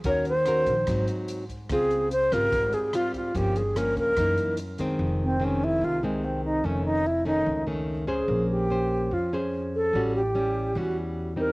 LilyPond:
<<
  \new Staff \with { instrumentName = "Alto flute" } { \time 4/4 \key f \minor \tempo 4 = 146 des''8 c''2 r4. | aes'4 c''8 bes'4 aes'8 f'8 f'8 | g'8 aes'8 bes'8 bes'4. r4 | r8 c'8 des'8 e'8 f'8 aes8 c'8 ees'8 |
cis'8 ees'8 e'8 ees'4 r4 gis'8~ | gis'8 g'4. f'8 r4 a'8~ | a'8 g'4. fis'8 r4 bes'8 | }
  \new Staff \with { instrumentName = "Nylon-string guitar" } { \time 4/4 \key f \minor << { <des' ges' bes'>8 r8 <des' ges' bes'>8 r8 <ges c' ees'>4. r8 | <c' f'>4 r8 <g c' f'>4. <g c' f'>4 | <f bes des'>8 r8 <f bes des'>4 <fes bes ees'>4 r8 <ees aes c'>8~ | <ees aes c'>4 <ees aes c'>4. <ees aes c'>4. |
<ees a cis'>4 r8 <ees a cis'>4 <ees a cis'>4 <cis' gis' c''>8~ | <cis' gis' c''>4 <des' c''>4. <des' aes' c''>4. | <g cis' fis'>8 r8 <g cis'>4 <g cis' fis'>4. <g c' ees'>8 | } \\ { ees2 aes,2 | des2 aes,2 | g,2 ges,2 | f,2 c2 |
f,2 f,2 | bes2 f2 | a,2 e2 | } >> }
  \new Staff \with { instrumentName = "Upright bass" } { \clef bass \time 4/4 \key f \minor ees,4. bes,,8 aes,,8 r4. | des,4. aes,,8 aes,,8 r4. | g,,4. des,8 ges,,8 r4. | f,,2 c,2 |
f,,2 cis,2 | bes,,2 f,2 | a,,2 e,2 | }
  \new DrumStaff \with { instrumentName = "Drums" } \drummode { \time 4/4 <hh bd>8 hh8 <hh ss>8 <hh bd>8 <hh bd ss>8 hh8 hh8 <hh bd>8 | <hh bd ss>8 hh8 hh8 <hh bd ss>8 <hh bd>8 hh8 <hh ss>8 <hh bd>8 | <hh bd>8 hh8 <hh ss>8 <hh bd>8 <hh bd ss>8 hh8 hh8 <hh bd>8 | r4 r4 r4 r4 |
r4 r4 r4 r4 | r4 r4 r4 r4 | r4 r4 r4 r4 | }
>>